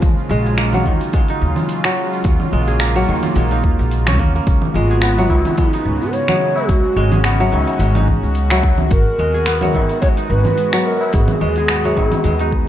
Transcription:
Already playing: analog synth pad C#3 G#3, kora A#3 D#4
0.02 upright bass D#2, analog synth pad F#3 F4, kick, open hi-hat, shaker
0.18 shaker
0.29 upright bass A#1, kora G#3
0.46 kora G#4, shaker
0.58 kora A#3, finger snap, open hi-hat, shaker
0.73 kora F#3, low conga, shaker
0.86 upright bass D#2, kora D#3, kick
1.01 open hi-hat, shaker
1.13 kora G#3, kick, open hi-hat, shaker
1.28 kora D#4, open hi-hat, shaker
1.41 upright bass D#2
1.56 low conga, shaker
1.69 open hi-hat, shaker
1.84 kora F#3, finger snap, open hi-hat, shaker
2.13 shaker
2.24 upright bass D#2, analog synth pad A#3, kick, open hi-hat, shaker
2.40 low conga, shaker
2.53 upright bass A#1, kora G#3
2.68 kora G#4, open hi-hat, shaker
2.80 kora A#3, finger snap, open hi-hat, shaker
2.96 kora F#3, shaker
3.08 upright bass D#2, kora D#3
3.23 open hi-hat, low conga, shaker
3.36 upright bass A#1, kora G#3, open hi-hat, shaker
3.51 kora D#4, open hi-hat, shaker
3.64 upright bass D#2, kick
3.79 upright bass A#1, shaker
3.91 open hi-hat, shaker
4.07 kora C#4, finger snap, open hi-hat, low conga, shaker
4.19 upright bass D#2, kora A#3, kick
4.35 kora A#3, shaker
4.47 upright bass C#2, analog synth pad C#3 G#3 B3 F#4, kick, open hi-hat, shaker
4.62 low conga, shaker
4.74 upright bass G#1, kora G#3, native american-style wooden flute F4
4.91 kora G#4, shaker
5.02 kora B3, finger snap, open hi-hat, shaker
5.17 kora F#3, tabla tin, shaker
5.30 upright bass C#2, kora D#3, kick, tabla na
5.45 open hi-hat, tabla na, tabla tin, low conga, shaker
5.57 kora G#3, native american-style wooden flute D#4, kick, open hi-hat, shaker
5.73 kora D#4, open hi-hat, shaker
5.85 upright bass C#2, tabla ge
6.01 tabla ge, shaker
6.13 native american-style wooden flute C#5, open hi-hat, shaker
6.28 kora F#3, finger snap, open hi-hat, low conga, shaker
6.41 tabla tin
6.56 tabla na, shaker
6.69 upright bass C#2, analog synth pad C#4, native american-style wooden flute F#4, kick, open hi-hat, shaker
6.85 shaker
6.96 upright bass G#1, kora G#3
7.12 kora G#4, open hi-hat, low conga, shaker
7.24 kora B3, finger snap, open hi-hat, shaker
7.40 kora F#3, tabla tin, shaker
7.52 upright bass C#2, kora D#3, tabla na
7.67 open hi-hat, tabla tin, shaker
7.79 upright bass G#1, kora G#3, open hi-hat, shaker
7.95 kora D#4, open hi-hat, low conga, shaker
8.08 kick
8.23 upright bass C#2, shaker
8.35 open hi-hat, shaker
8.50 kora F#3, finger snap, open hi-hat, tabla na, shaker
8.63 kick, tabla tin
8.78 tabla tin, low conga, shaker
8.91 upright bass G#1, analog synth pad G#3 B3, native american-style wooden flute A#4, kick, open hi-hat, shaker
9.07 shaker
9.18 upright bass D#2, kora G#3
9.34 kora G#4, shaker
9.46 kora B3, finger snap, open hi-hat, shaker
9.61 kora F#3, tabla tin, low conga, shaker
9.74 upright bass G#1, kora D#3, kick, tabla na
9.89 open hi-hat, tabla na, tabla tin, shaker
10.01 kora G#3, native american-style wooden flute C#5, kick, open hi-hat, shaker
10.17 kora D#4, open hi-hat, shaker
10.29 upright bass G#1, native american-style wooden flute B4, tabla ge
10.45 low conga, tabla ge, shaker
10.58 open hi-hat, shaker
10.73 kora F#3, finger snap, open hi-hat, shaker
10.85 native american-style wooden flute A#4, tabla tin
11.01 tabla na, shaker
11.13 upright bass G#1, native american-style wooden flute G#4, kick, open hi-hat, shaker
11.28 open hi-hat, low conga, shaker
11.41 upright bass D#2, kora G#3
11.56 kora G#4, open hi-hat, shaker
11.68 kora B3, finger snap, open hi-hat, tabla ge, shaker
11.84 kora F#3, open hi-hat, tabla tin, shaker
11.97 upright bass G#1, kora D#3, kick, tabla na
12.12 open hi-hat, tabla na, tabla tin, low conga, shaker
12.24 upright bass D#2, kora G#3, open hi-hat, shaker
12.39 kora D#4, open hi-hat, shaker
12.52 kick

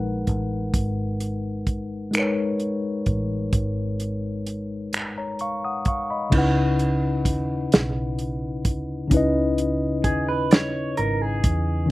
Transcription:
Already playing: fingered electric bass A#1, tine electric piano G#3 D#4 A#4 B4 F#5
0.27 fingered electric bass A1, kick, closed hi-hat
0.74 fingered electric bass G#1, kick, closed hi-hat
1.20 closed hi-hat
1.67 kick, closed hi-hat
2.11 tine electric piano G#3 D#4 A#4, finger snap, closed hi-hat
2.17 tine electric piano B4 C#5
2.60 closed hi-hat
3.06 fingered electric bass A1, kick, closed hi-hat
3.53 fingered electric bass G#1, kick, closed hi-hat
4.00 closed hi-hat
4.46 closed hi-hat
4.93 finger snap, closed hi-hat
5.18 tine electric piano C#5 A#5
5.39 fingered electric bass A#1, tine electric piano F5 C#6, closed hi-hat
5.64 tine electric piano F#5 D#6
5.85 fingered electric bass D2, tine electric piano F5 C#6, kick, closed hi-hat
6.10 tine electric piano D#5 B5
6.30 fingered electric bass C#2, tine electric piano C#3 C#4 D#4, kick, crash
6.35 tine electric piano E4 B4 F#5
6.79 closed hi-hat
7.25 fingered electric bass D#2, kick, closed hi-hat
7.72 fingered electric bass B1, snare, closed hi-hat
8.19 closed hi-hat
8.65 fingered electric bass D2, kick, closed hi-hat
9.08 tine electric piano C#3 C#4, kick, closed hi-hat
9.12 fingered electric bass C#2, tine electric piano D#4 E4 B4
9.17 tine electric piano D#5
9.58 closed hi-hat
10.04 fingered electric bass D#2, clean electric guitar G#4, kick, closed hi-hat
10.29 clean electric guitar B4
10.51 clean electric guitar C#5, snare, closed hi-hat
10.97 fingered electric bass G#1, clean electric guitar A#4, closed hi-hat
11.22 clean electric guitar G#4
11.44 fingered electric bass E2, kick, closed hi-hat
11.86 tine electric piano D#3

